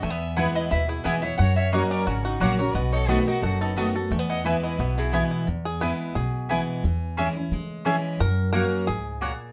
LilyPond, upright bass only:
\new Staff \with { instrumentName = "Upright bass" } { \clef bass \time 4/4 \key e \major \tempo 4 = 176 e,2 dis,4 e,4 | fis,2 gis,,4 ais,,4 | b,,2 fis,,2 | e,2 b,,2 |
e,2 b,,2 | e,2 cis2 | fis,2 cis,2 | }